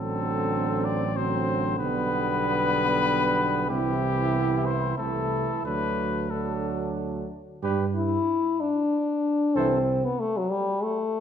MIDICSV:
0, 0, Header, 1, 6, 480
1, 0, Start_track
1, 0, Key_signature, 1, "major"
1, 0, Tempo, 633580
1, 1355, Time_signature, 3, 2, 24, 8
1, 3283, Tempo, 658617
1, 6163, Tempo, 636267
1, 8363, End_track
2, 0, Start_track
2, 0, Title_t, "Trumpet"
2, 0, Program_c, 0, 56
2, 0, Note_on_c, 0, 69, 76
2, 644, Note_on_c, 0, 74, 77
2, 655, Note_off_c, 0, 69, 0
2, 883, Note_on_c, 0, 72, 78
2, 894, Note_off_c, 0, 74, 0
2, 1350, Note_off_c, 0, 72, 0
2, 1355, Note_on_c, 0, 71, 106
2, 2770, Note_off_c, 0, 71, 0
2, 2800, Note_on_c, 0, 67, 83
2, 3518, Note_on_c, 0, 72, 67
2, 3529, Note_off_c, 0, 67, 0
2, 3748, Note_off_c, 0, 72, 0
2, 3753, Note_on_c, 0, 69, 69
2, 4230, Note_off_c, 0, 69, 0
2, 4246, Note_on_c, 0, 71, 75
2, 4720, Note_on_c, 0, 69, 53
2, 4731, Note_off_c, 0, 71, 0
2, 5203, Note_off_c, 0, 69, 0
2, 5688, Note_on_c, 0, 71, 56
2, 5854, Note_off_c, 0, 71, 0
2, 7126, Note_on_c, 0, 72, 62
2, 7293, Note_off_c, 0, 72, 0
2, 8363, End_track
3, 0, Start_track
3, 0, Title_t, "Flugelhorn"
3, 0, Program_c, 1, 56
3, 0, Note_on_c, 1, 60, 60
3, 843, Note_off_c, 1, 60, 0
3, 875, Note_on_c, 1, 60, 64
3, 1340, Note_off_c, 1, 60, 0
3, 1345, Note_on_c, 1, 59, 60
3, 2799, Note_on_c, 1, 64, 60
3, 2810, Note_off_c, 1, 59, 0
3, 3753, Note_off_c, 1, 64, 0
3, 3758, Note_on_c, 1, 64, 51
3, 4233, Note_off_c, 1, 64, 0
3, 4245, Note_on_c, 1, 62, 46
3, 4599, Note_off_c, 1, 62, 0
3, 4723, Note_on_c, 1, 62, 43
3, 5434, Note_off_c, 1, 62, 0
3, 5685, Note_on_c, 1, 67, 59
3, 5852, Note_off_c, 1, 67, 0
3, 7123, Note_on_c, 1, 69, 59
3, 7291, Note_off_c, 1, 69, 0
3, 8363, End_track
4, 0, Start_track
4, 0, Title_t, "French horn"
4, 0, Program_c, 2, 60
4, 0, Note_on_c, 2, 54, 56
4, 848, Note_off_c, 2, 54, 0
4, 883, Note_on_c, 2, 54, 64
4, 1347, Note_off_c, 2, 54, 0
4, 1360, Note_on_c, 2, 55, 62
4, 2806, Note_on_c, 2, 60, 58
4, 2817, Note_off_c, 2, 55, 0
4, 3292, Note_on_c, 2, 59, 52
4, 3303, Note_off_c, 2, 60, 0
4, 3756, Note_on_c, 2, 57, 54
4, 3767, Note_off_c, 2, 59, 0
4, 4230, Note_off_c, 2, 57, 0
4, 4234, Note_on_c, 2, 57, 46
4, 4712, Note_off_c, 2, 57, 0
4, 4720, Note_on_c, 2, 57, 45
4, 5432, Note_off_c, 2, 57, 0
4, 5922, Note_on_c, 2, 64, 84
4, 6403, Note_on_c, 2, 62, 73
4, 6414, Note_off_c, 2, 64, 0
4, 7128, Note_on_c, 2, 60, 85
4, 7140, Note_off_c, 2, 62, 0
4, 7490, Note_on_c, 2, 59, 72
4, 7501, Note_off_c, 2, 60, 0
4, 7606, Note_on_c, 2, 57, 86
4, 7617, Note_off_c, 2, 59, 0
4, 7737, Note_on_c, 2, 54, 77
4, 7748, Note_off_c, 2, 57, 0
4, 7842, Note_on_c, 2, 55, 89
4, 7853, Note_off_c, 2, 54, 0
4, 8084, Note_on_c, 2, 57, 75
4, 8095, Note_off_c, 2, 55, 0
4, 8363, Note_off_c, 2, 57, 0
4, 8363, End_track
5, 0, Start_track
5, 0, Title_t, "Trombone"
5, 0, Program_c, 3, 57
5, 0, Note_on_c, 3, 50, 56
5, 846, Note_off_c, 3, 50, 0
5, 887, Note_on_c, 3, 50, 50
5, 1349, Note_off_c, 3, 50, 0
5, 1364, Note_on_c, 3, 50, 61
5, 2775, Note_off_c, 3, 50, 0
5, 2806, Note_on_c, 3, 52, 55
5, 3740, Note_off_c, 3, 52, 0
5, 3764, Note_on_c, 3, 52, 48
5, 4248, Note_on_c, 3, 54, 43
5, 4259, Note_off_c, 3, 52, 0
5, 4723, Note_off_c, 3, 54, 0
5, 4728, Note_on_c, 3, 54, 51
5, 5436, Note_off_c, 3, 54, 0
5, 5685, Note_on_c, 3, 55, 50
5, 5852, Note_off_c, 3, 55, 0
5, 7130, Note_on_c, 3, 52, 58
5, 7296, Note_off_c, 3, 52, 0
5, 8363, End_track
6, 0, Start_track
6, 0, Title_t, "Tuba"
6, 0, Program_c, 4, 58
6, 0, Note_on_c, 4, 33, 58
6, 1321, Note_off_c, 4, 33, 0
6, 1355, Note_on_c, 4, 35, 63
6, 2792, Note_on_c, 4, 36, 63
6, 2803, Note_off_c, 4, 35, 0
6, 3746, Note_off_c, 4, 36, 0
6, 3750, Note_on_c, 4, 36, 53
6, 4111, Note_off_c, 4, 36, 0
6, 4235, Note_on_c, 4, 38, 51
6, 5422, Note_off_c, 4, 38, 0
6, 5687, Note_on_c, 4, 43, 68
6, 6083, Note_off_c, 4, 43, 0
6, 7123, Note_on_c, 4, 36, 71
6, 7523, Note_off_c, 4, 36, 0
6, 8363, End_track
0, 0, End_of_file